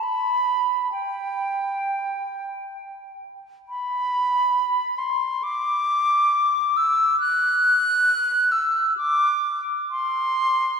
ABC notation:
X:1
M:4/4
L:1/8
Q:1/4=66
K:G
V:1 name="Flute"
b2 g4- g z | [K:Dmix] b3 c' d'3 e' | f'3 e' d' z c'2 |]